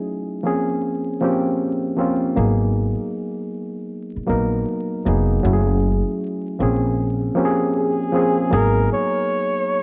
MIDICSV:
0, 0, Header, 1, 5, 480
1, 0, Start_track
1, 0, Tempo, 769231
1, 1480, Time_signature, 4, 2, 24, 8
1, 6133, End_track
2, 0, Start_track
2, 0, Title_t, "Flugelhorn"
2, 0, Program_c, 0, 56
2, 4853, Note_on_c, 0, 68, 88
2, 5301, Note_off_c, 0, 68, 0
2, 5329, Note_on_c, 0, 70, 103
2, 5548, Note_off_c, 0, 70, 0
2, 5570, Note_on_c, 0, 73, 119
2, 6133, Note_off_c, 0, 73, 0
2, 6133, End_track
3, 0, Start_track
3, 0, Title_t, "Reed electric piano"
3, 0, Program_c, 1, 4
3, 0, Control_c, 1, 64, 127
3, 0, Note_on_c, 1, 54, 66
3, 0, Note_on_c, 1, 57, 61
3, 0, Note_on_c, 1, 61, 66
3, 0, Note_on_c, 1, 63, 46
3, 0, Note_on_c, 1, 64, 66
3, 0, Note_on_c, 1, 68, 79
3, 270, Note_on_c, 1, 53, 77
3, 273, Note_off_c, 1, 54, 0
3, 275, Note_on_c, 1, 58, 71
3, 276, Note_off_c, 1, 57, 0
3, 279, Note_off_c, 1, 61, 0
3, 282, Note_off_c, 1, 64, 0
3, 282, Note_on_c, 1, 60, 68
3, 284, Note_off_c, 1, 68, 0
3, 287, Control_c, 1, 64, 0
3, 287, Note_on_c, 1, 61, 69
3, 289, Note_off_c, 1, 63, 0
3, 292, Note_on_c, 1, 68, 88
3, 406, Control_c, 1, 64, 127
3, 689, Note_off_c, 1, 53, 0
3, 691, Note_off_c, 1, 58, 0
3, 695, Note_off_c, 1, 60, 0
3, 697, Note_off_c, 1, 61, 0
3, 700, Note_off_c, 1, 68, 0
3, 752, Note_on_c, 1, 53, 76
3, 758, Note_on_c, 1, 58, 71
3, 764, Note_on_c, 1, 60, 73
3, 769, Note_on_c, 1, 61, 73
3, 775, Note_on_c, 1, 67, 87
3, 1160, Note_off_c, 1, 53, 0
3, 1163, Note_off_c, 1, 58, 0
3, 1166, Note_off_c, 1, 60, 0
3, 1169, Note_off_c, 1, 61, 0
3, 1171, Note_off_c, 1, 67, 0
3, 1228, Note_on_c, 1, 53, 67
3, 1233, Note_on_c, 1, 58, 59
3, 1239, Note_on_c, 1, 60, 68
3, 1245, Note_on_c, 1, 61, 64
3, 1250, Note_on_c, 1, 65, 79
3, 1436, Note_off_c, 1, 53, 0
3, 1439, Note_off_c, 1, 58, 0
3, 1441, Note_off_c, 1, 60, 0
3, 1444, Note_off_c, 1, 61, 0
3, 1447, Note_off_c, 1, 65, 0
3, 1469, Note_on_c, 1, 54, 75
3, 1475, Note_on_c, 1, 58, 67
3, 1480, Note_on_c, 1, 59, 64
3, 1486, Note_on_c, 1, 63, 64
3, 1488, Control_c, 1, 64, 0
3, 1491, Note_on_c, 1, 68, 78
3, 1598, Control_c, 1, 64, 127
3, 2220, Note_off_c, 1, 54, 0
3, 2223, Note_off_c, 1, 58, 0
3, 2226, Note_off_c, 1, 59, 0
3, 2229, Note_off_c, 1, 63, 0
3, 2231, Note_off_c, 1, 68, 0
3, 2660, Note_on_c, 1, 54, 75
3, 2666, Note_on_c, 1, 58, 79
3, 2671, Note_on_c, 1, 59, 66
3, 2678, Note_on_c, 1, 63, 72
3, 2682, Note_on_c, 1, 70, 86
3, 3074, Note_off_c, 1, 54, 0
3, 3077, Note_off_c, 1, 58, 0
3, 3080, Note_off_c, 1, 59, 0
3, 3083, Note_off_c, 1, 63, 0
3, 3085, Note_off_c, 1, 70, 0
3, 3151, Note_on_c, 1, 54, 73
3, 3157, Note_on_c, 1, 58, 67
3, 3162, Note_on_c, 1, 59, 71
3, 3168, Note_on_c, 1, 63, 64
3, 3174, Note_on_c, 1, 68, 80
3, 3358, Note_off_c, 1, 54, 0
3, 3360, Note_off_c, 1, 58, 0
3, 3363, Note_off_c, 1, 59, 0
3, 3366, Note_off_c, 1, 63, 0
3, 3369, Note_off_c, 1, 68, 0
3, 3390, Note_on_c, 1, 54, 69
3, 3395, Note_on_c, 1, 57, 61
3, 3400, Note_on_c, 1, 61, 70
3, 3406, Note_on_c, 1, 64, 72
3, 3407, Control_c, 1, 64, 0
3, 3411, Note_on_c, 1, 66, 66
3, 3452, Note_on_c, 1, 68, 85
3, 3459, Note_off_c, 1, 66, 0
3, 3535, Control_c, 1, 64, 127
3, 4113, Note_on_c, 1, 53, 76
3, 4115, Note_off_c, 1, 54, 0
3, 4117, Note_off_c, 1, 57, 0
3, 4118, Note_on_c, 1, 58, 74
3, 4120, Note_off_c, 1, 61, 0
3, 4123, Note_off_c, 1, 64, 0
3, 4125, Note_on_c, 1, 60, 76
3, 4127, Control_c, 1, 64, 0
3, 4128, Note_off_c, 1, 68, 0
3, 4130, Note_on_c, 1, 61, 70
3, 4135, Note_on_c, 1, 68, 85
3, 4222, Control_c, 1, 64, 127
3, 4530, Note_off_c, 1, 53, 0
3, 4533, Note_off_c, 1, 58, 0
3, 4536, Note_off_c, 1, 60, 0
3, 4539, Note_off_c, 1, 61, 0
3, 4541, Note_off_c, 1, 68, 0
3, 4586, Note_on_c, 1, 53, 82
3, 4591, Note_on_c, 1, 58, 77
3, 4597, Note_on_c, 1, 60, 74
3, 4603, Note_on_c, 1, 61, 76
3, 4607, Note_on_c, 1, 67, 73
3, 4648, Note_on_c, 1, 68, 89
3, 4657, Note_off_c, 1, 67, 0
3, 4997, Note_off_c, 1, 53, 0
3, 5000, Note_off_c, 1, 58, 0
3, 5002, Note_off_c, 1, 60, 0
3, 5006, Note_off_c, 1, 61, 0
3, 5028, Note_off_c, 1, 68, 0
3, 5068, Note_on_c, 1, 53, 73
3, 5073, Note_on_c, 1, 58, 63
3, 5079, Note_on_c, 1, 60, 70
3, 5085, Note_on_c, 1, 61, 59
3, 5090, Note_on_c, 1, 68, 81
3, 5276, Note_off_c, 1, 53, 0
3, 5278, Note_off_c, 1, 58, 0
3, 5281, Note_off_c, 1, 60, 0
3, 5284, Note_off_c, 1, 61, 0
3, 5287, Note_off_c, 1, 68, 0
3, 5305, Note_on_c, 1, 54, 81
3, 5311, Note_on_c, 1, 58, 70
3, 5316, Note_on_c, 1, 59, 71
3, 5322, Note_on_c, 1, 63, 73
3, 5327, Note_on_c, 1, 68, 98
3, 5329, Control_c, 1, 64, 0
3, 5439, Control_c, 1, 64, 127
3, 6059, Note_off_c, 1, 54, 0
3, 6062, Note_off_c, 1, 58, 0
3, 6064, Note_off_c, 1, 59, 0
3, 6067, Note_off_c, 1, 63, 0
3, 6070, Note_off_c, 1, 68, 0
3, 6133, End_track
4, 0, Start_track
4, 0, Title_t, "Upright bass"
4, 0, Program_c, 2, 32
4, 1480, Note_on_c, 2, 32, 85
4, 1827, Note_off_c, 2, 32, 0
4, 2679, Note_on_c, 2, 34, 70
4, 2889, Note_off_c, 2, 34, 0
4, 3159, Note_on_c, 2, 29, 88
4, 3369, Note_off_c, 2, 29, 0
4, 3398, Note_on_c, 2, 30, 96
4, 3747, Note_off_c, 2, 30, 0
4, 4120, Note_on_c, 2, 34, 85
4, 4539, Note_off_c, 2, 34, 0
4, 5320, Note_on_c, 2, 32, 105
4, 5530, Note_off_c, 2, 32, 0
4, 6133, End_track
5, 0, Start_track
5, 0, Title_t, "Muted upright bass strokes"
5, 2598, Note_on_c, 9, 29, 45
5, 2660, Note_off_c, 9, 29, 0
5, 6133, End_track
0, 0, End_of_file